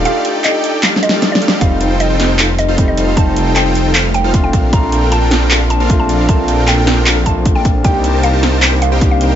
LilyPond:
<<
  \new Staff \with { instrumentName = "Synth pluck" } { \time 4/4 \key bes \major \tempo 4 = 154 f''8. r16 ees''8. r8. ees''8. d''8. | f''8. r16 ees''8. r8. ees''8. ees''8. | a''8. r16 g''8. r8. g''8. g''8. | bes''8. r16 a''8. r8. a''8. a''8. |
a''8. r16 g''8. r8. a''8. g''8. | g''8. r16 f''8. r8. f''8. f''8. | }
  \new Staff \with { instrumentName = "Supersaw synth" } { \time 4/4 \key bes \major <ees' g' a' d'' f''>8 <ees' g' a' d'' g''>8. <ees' g' a' d'' g''>8. <ees' g' a' d'' f''>16 r8 <ees' g' a' d'' f''>8 r16 <ees' g' a' d'' f''>8 | <ees' f' a' c'' f''>8 <ees' f' a' c'' g''>8. <ees' f' a' c'' g''>8. <ees' f' a' c'' f''>16 r8 <ees' f' a' c'' f''>8 r16 <ees' f' a' c'' f''>8 | <ees' f' a' c'' f''>8 <ees' f' a' c'' g''>8. <ees' f' a' c'' g''>8. <ees' f' a' c'' f''>16 r8 <ees' f' a' c'' f''>8 r16 <d' f' a' bes' f''>8 | <d' f' a' bes' f''>8 <d' f' a' bes' g''>8. <d' f' a' bes' g''>8. <d' f' a' bes' f''>16 r8 <d' f' a' bes' f''>8 r16 <d' f' a' bes' f''>8 |
<d' f' a' bes' f''>8 <d' f' a' bes' g''>8. <d' f' a' bes' g''>8. <d' f' a' bes' f''>16 r4 <d' f' a' bes' a''>16 r8 | <ees' g' bes' c'' g''>8 <ees' g' bes' c'' a''>8. <ees' g' bes' c'' a''>8. <ees' g' bes' c'' g''>16 r8 <ees' g' bes' c'' g''>8 r16 <ees' g' bes' c'' g''>8 | }
  \new Staff \with { instrumentName = "Felt piano" } { \time 4/4 \key bes \major <a d' f' g'>2~ <a d' f' g'>8 <a d' f' g'>4. | <g a c' ees'>2. <g a c' ees'>4 | <g a c' ees'>2. <a c' d' f'>4 | <a c' d' f'>2. <a c' d' f'>4 |
<a c' d' f'>2~ <a c' d' f'>8 <a c' d' f'>4. | <bes d' ees' g'>2. <bes d' ees' g'>4 | }
  \new Staff \with { instrumentName = "Detuned saw bass" } { \clef bass \time 4/4 \key bes \major r1 | f,,1~ | f,,2.~ f,,8 bes,,8~ | bes,,1~ |
bes,,1 | c,1 | }
  \new DrumStaff \with { instrumentName = "Drums" } \drummode { \time 4/4 hh8 hh8 <hc hh>8 hh8 \tuplet 3/2 { <hc hh sn>16 r16 sn16 hh16 sn16 r16 <hh sn>16 r16 sn16 hh16 sn16 r16 } | <hh bd>8 hh8 hh8 <hh sn>8 <hc hh>8 hh8 <hh bd>8 hh8 | <hh bd>8 hh8 <hc hh>8 hh8 <hc hh>8 hh8 <hh bd>8 <hh bd>8 | <hh bd>8 hh8 hh8 <hh sn>8 <hc hh>8 hh8 <hh bd>8 hh8 |
<hh bd>8 hh8 <hc hh>8 <hh sn>8 <hc hh>8 <hh bd>8 <hh bd>8 <hh bd>8 | <hh bd>8 hh8 hh8 <hh sn>8 <hc hh>8 hh8 <hh bd>8 hh8 | }
>>